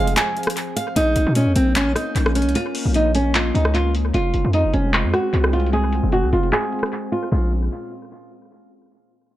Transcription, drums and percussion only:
0.07 closed hi-hat soft
0.16 clap loud
0.16 closed hi-hat medium
0.37 closed hi-hat soft
0.43 cross-stick medium
0.43 closed hi-hat medium
0.50 closed hi-hat medium
0.57 closed hi-hat medium
0.77 closed hi-hat medium
0.96 closed hi-hat medium
1.16 closed hi-hat medium
1.35 closed hi-hat medium
1.56 closed hi-hat medium
1.75 clap loud
1.75 closed hi-hat medium
1.96 cross-stick medium
1.96 closed hi-hat medium
2.16 closed hi-hat medium
2.26 cross-stick loud
2.35 closed hi-hat medium
2.42 closed hi-hat medium
2.49 closed hi-hat soft
2.55 closed hi-hat medium
2.75 open hi-hat medium
2.94 closed hi-hat medium
3.15 closed hi-hat medium
3.34 clap loud
3.34 closed hi-hat medium
3.55 closed hi-hat medium
3.65 cross-stick medium
3.75 closed hi-hat medium
3.95 closed hi-hat medium
4.14 closed hi-hat medium
4.34 closed hi-hat medium
4.53 closed hi-hat medium
4.74 closed hi-hat medium
4.93 clap loud
4.93 closed hi-hat medium
5.14 cross-stick medium
5.14 closed hi-hat medium
5.34 closed hi-hat medium
5.44 cross-stick loud
5.53 closed hi-hat medium
5.60 closed hi-hat medium
5.66 closed hi-hat soft
5.73 closed hi-hat medium
5.93 closed hi-hat medium
6.12 closed hi-hat medium
6.33 closed hi-hat medium
6.43 closed hi-hat soft
6.52 clap loud
6.52 closed hi-hat medium
6.72 closed hi-hat soft
6.79 cross-stick medium
6.79 closed hi-hat medium
6.86 closed hi-hat medium
6.93 closed hi-hat medium
7.12 closed hi-hat medium
7.32 crash medium

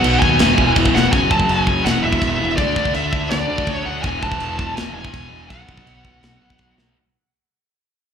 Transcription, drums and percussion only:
0.04 crash medium
0.22 kick loud
0.39 snare loud
0.39 crash medium
0.58 kick medium
0.76 kick medium
0.76 crash medium
0.85 kick medium
0.96 snare medium
1.13 kick loud
1.13 china medium
1.31 kick medium
1.40 kick medium
1.49 china medium
1.67 kick medium
1.86 snare loud
1.86 china medium
2.13 kick medium
2.22 kick medium
2.22 china medium
2.58 kick loud
2.58 china medium
2.76 kick medium
2.85 kick medium
2.94 china medium
3.13 kick medium
3.31 snare loud
3.31 china medium
3.58 kick medium
3.67 kick medium
3.67 china medium
4.03 kick loud
4.03 china medium
4.23 kick medium
4.32 kick medium
4.40 china medium
4.59 kick medium
4.77 snare loud
4.77 china medium
5.05 kick medium
5.14 kick medium
5.14 china medium
5.50 kick loud
5.50 china medium
5.69 kick medium
5.77 kick medium
5.87 china medium
6.05 kick medium
6.23 snare loud
6.23 china medium
6.50 kick medium
6.58 kick medium
6.58 china medium
6.78 snare medium

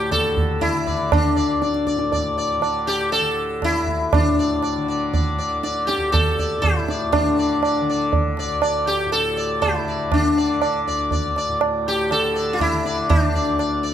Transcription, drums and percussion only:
0.11 tabla na medium
0.11 tabla ge medium
0.37 tabla ge medium
0.62 tabla na medium
0.62 tabla ge medium
0.87 tabla ge soft
1.12 tabla na loud
1.12 tabla ge medium
1.62 tabla te medium
1.74 tabla te medium
1.87 tabla ke medium
1.99 tabla te medium
2.12 tabla tin medium
2.12 tabla ge medium
2.62 tabla na medium
3.13 tabla na medium
3.62 tabla na medium
3.62 tabla ge medium
3.87 tabla ge soft
4.13 tabla na medium
4.13 tabla ge medium
4.63 tabla na medium
5.13 tabla tin medium
5.13 tabla ge medium
5.64 tabla te medium
5.89 tabla te medium
6.14 tabla na medium
6.14 tabla ge medium
6.38 tabla ge medium
6.63 tabla na medium
6.63 tabla ge medium
6.89 tabla te medium
7.13 tabla na loud
7.13 tabla ge medium
7.63 tabla na medium
8.13 tabla tin medium
8.13 tabla ge medium
8.37 tabla na medium
8.62 tabla na medium
9.12 tabla na medium
9.62 tabla na medium
9.62 tabla ge medium
10.12 tabla na loud
10.12 tabla ge medium
10.62 tabla na medium
11.11 tabla tin medium
11.11 tabla ge medium
11.36 tabla na medium
11.61 tabla na medium
12.11 tabla na medium
12.60 tabla na medium
12.60 tabla ge medium
12.85 tabla te medium
13.10 tabla na loud
13.10 tabla ge medium
13.59 tabla na medium

